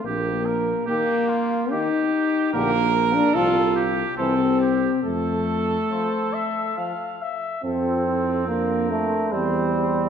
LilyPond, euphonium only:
\new Staff \with { instrumentName = "Euphonium" } { \clef bass \time 3/4 \key ees \lydian \tempo 4 = 72 r4 ees4 ees4 | \key f \major d4 f4 e4 | r4 f4 f4 | c'4 bes8 a8 g4 | }